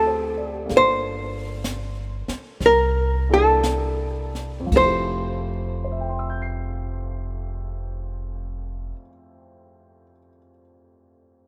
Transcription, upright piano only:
0.00 0.70 A3 soft
0.00 0.70 C4 soft
0.00 0.70 E4 soft
0.00 0.70 F#4 soft
0.00 0.36 A4 soft
0.07 0.55 C5 soft
0.37 0.86 D5 soft
0.66 2.59 A#3 soft
0.66 2.60 D4 soft
0.66 2.61 F4 soft
0.71 2.61 A4 soft
3.29 4.72 A#3 soft
3.29 4.72 D4 soft
3.29 4.72 E4 soft
3.29 4.72 A4 soft
4.60 8.83 F2 soft
4.66 8.89 F3 soft
4.72 8.95 A3 soft
4.79 9.02 E4 soft
4.85 9.08 G4 medium
5.84 10.03 C5 soft
5.92 10.11 E5 soft
6.00 10.19 G5 soft
6.09 10.28 C6 soft
6.19 10.38 E6 soft
6.30 10.48 G6 soft
6.42 10.61 C7 soft

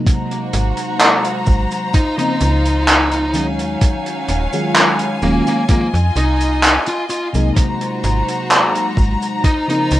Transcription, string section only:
0.06 1.92 F#4 medium
0.06 3.31 C5 medium
0.06 3.31 A#5 medium
1.94 3.33 F4 medium
1.94 3.33 D#5 medium
3.35 5.67 F#3 medium
3.35 5.67 C#5 medium
3.35 5.67 F5 medium
3.35 7.53 G#5 medium
5.69 7.55 F4 medium
5.69 7.55 D#5 medium
7.56 9.42 F#4 medium
7.56 9.42 C5 medium
7.56 10.00 A#5 medium
9.44 10.00 F4 medium
9.44 10.00 C5 medium
9.44 10.00 D#5 medium

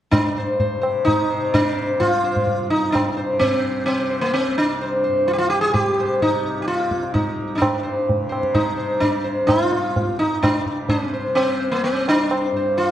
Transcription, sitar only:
0.11 0.78 D4 medium
0.38 0.59 C5 soft
0.60 0.80 C5 soft
0.81 1.04 C5 soft
1.05 1.54 D#4 medium
1.30 1.52 C5 soft
1.54 2.02 D4 medium
1.77 1.99 C5 soft
2.00 2.66 F4 medium
2.24 2.46 C5 soft
2.70 2.95 D#4 medium
2.92 3.39 D4 medium
3.17 3.39 C5 soft
3.39 3.85 C4 medium
3.86 4.21 C4 medium
4.10 4.32 C5 soft
4.21 4.33 A#3 medium
4.34 4.57 C4 medium
4.58 5.01 D4 medium
4.81 5.03 C5 soft
5.04 5.26 C5 soft
5.28 5.33 F4 medium
5.33 5.38 G4 medium
5.38 5.49 F4 medium
5.50 5.61 G4 medium
5.61 5.73 G#4 medium
5.74 6.22 G4 medium
6.00 6.21 C5 soft
6.22 6.59 D#4 medium
6.62 6.67 G4 medium
6.68 7.13 F4 medium
7.14 7.54 D#4 medium
7.55 8.26 D4 medium
7.55 7.62 D#4 soft
7.83 8.06 C5 soft
8.29 8.53 C5 soft
8.54 9.03 D#4 medium
8.77 9.00 C5 soft
9.00 9.50 D4 medium
9.24 9.47 C5 soft
9.47 10.19 F4 medium
10.19 10.43 D#4 medium
10.43 10.89 D4 medium
10.90 11.34 C4 medium
11.14 11.35 C5 soft
11.35 11.71 C4 medium
11.60 11.81 C5 soft
11.72 11.84 A#3 medium
11.84 12.08 C4 medium
12.09 12.51 D4 medium
12.33 12.53 C5 soft
12.56 12.76 C5 soft
12.77 12.91 F4 medium
12.77 12.91 C5 soft

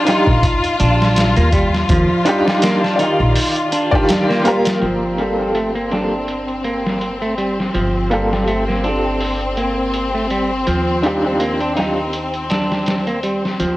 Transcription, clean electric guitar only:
0.07 0.78 D#4 medium
0.80 1.35 D4 medium
1.37 1.51 A#3 medium
1.53 1.72 G3 medium
1.90 2.24 F3 loud
2.26 2.61 G3 medium
2.63 2.81 A#3 medium
2.83 2.98 D4 medium
3.00 3.71 D#4 medium
3.72 4.27 D4 medium
4.29 4.44 A#3 medium
4.45 4.65 G3 medium
4.82 5.17 F3 medium
5.18 5.53 G3 medium
5.55 5.74 A3 medium
5.75 5.90 A#3 medium
5.92 6.63 D4 medium
6.65 7.20 A#3 medium
7.22 7.36 A3 medium
7.38 7.57 G3 medium
7.74 8.09 F3 medium
8.11 8.46 G3 medium
8.48 8.66 A3 medium
8.68 8.83 A#3 medium
8.84 9.56 D4 medium
9.57 10.12 A#3 medium
10.15 10.29 A3 medium
10.31 10.50 G3 medium
10.67 11.02 F3 medium
11.04 11.39 G3 medium
11.40 11.59 A#3 medium
11.61 11.75 D4 medium
11.77 12.49 D#4 medium
12.50 13.05 D4 medium
13.07 13.22 A#3 medium
13.23 13.43 G3 medium
13.60 13.77 F3 medium

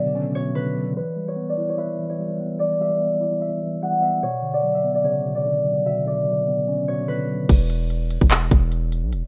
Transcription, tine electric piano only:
0.00 0.35 B2 medium
0.00 0.98 C#3 loud
0.00 0.55 D3 medium
0.00 0.76 F#3 medium
0.00 0.98 B3 medium
0.15 0.97 C#4 loud
0.35 0.96 B2 medium
0.55 0.96 D3 medium
0.76 0.96 F#3 medium
1.16 2.18 G3 medium
1.37 2.39 B3 medium
1.58 2.60 E4 medium
1.78 2.80 E5 loud
1.99 2.58 E3 medium
2.19 2.79 G3 medium
2.40 2.99 B3 medium
2.59 3.61 E3 medium
2.80 3.81 G3 medium
3.00 4.01 B3 medium
3.20 4.23 E4 medium
3.42 4.23 E5 loud
3.62 4.23 E3 medium
3.82 4.23 G3 medium
4.03 4.23 B3 medium
4.23 5.24 B2 medium
4.42 5.44 D3 medium
4.63 5.64 F#3 medium
4.84 5.86 B3 medium
5.04 6.06 C#3 loud
5.25 5.85 B2 medium
5.45 6.05 D3 medium
5.65 6.26 F#3 medium
5.86 6.87 B2 medium
6.06 7.07 D3 medium
6.27 7.28 F#3 medium
6.47 7.49 B3 medium
6.68 7.50 C#4 loud
6.88 7.49 B2 medium
7.08 7.49 D3 medium
7.29 7.49 F#3 medium

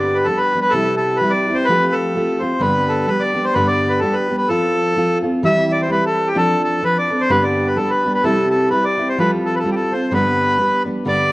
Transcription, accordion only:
0.00 0.17 D5 medium
0.15 0.27 B4 medium
0.25 0.39 A4 medium
0.37 0.60 B4 medium
0.61 0.73 B4 medium
0.70 0.95 A4 loud
0.97 1.18 A4 medium
1.17 1.31 B4 medium
1.30 1.57 D5 medium
1.54 1.66 C5 medium
1.65 1.94 B4 loud
1.92 2.42 A4 medium
2.40 2.62 C5 medium
2.61 3.06 B4 loud
2.89 3.09 A4 medium
3.08 3.22 B4 loud
3.20 3.45 D5 loud
3.44 3.54 C5 medium
3.54 3.67 B4 loud
3.67 3.92 D5 medium
3.89 4.00 B4 medium
3.99 4.15 A4 medium
4.13 4.36 B4 medium
4.38 4.49 B4 medium
4.48 5.19 A4 loud
5.45 5.72 E5 loud
5.72 5.81 D5 medium
5.82 5.90 C5 medium
5.91 6.04 B4 medium
6.06 6.28 A4 medium
6.28 6.37 G4 medium
6.38 6.63 A4 loud
6.64 6.84 A4 medium
6.85 6.98 B4 loud
6.99 7.22 D5 medium
7.21 7.31 C5 medium
7.30 7.44 B4 loud
7.44 7.68 D5 medium
7.67 7.77 B4 medium
7.77 7.91 A4 medium
7.90 8.13 B4 medium
8.14 8.24 B4 medium
8.24 8.49 A4 loud
8.50 8.69 A4 medium
8.70 8.84 B4 medium
8.84 9.08 D5 loud
9.09 9.18 C5 medium
9.19 9.31 B4 loud
9.46 9.55 A4 medium
9.55 9.70 A4 medium
9.55 9.58 B4 medium
9.71 9.75 G4 medium
9.76 9.93 A4 medium
9.93 10.13 C5 medium
10.14 10.83 B4 loud
11.08 11.32 D5 loud

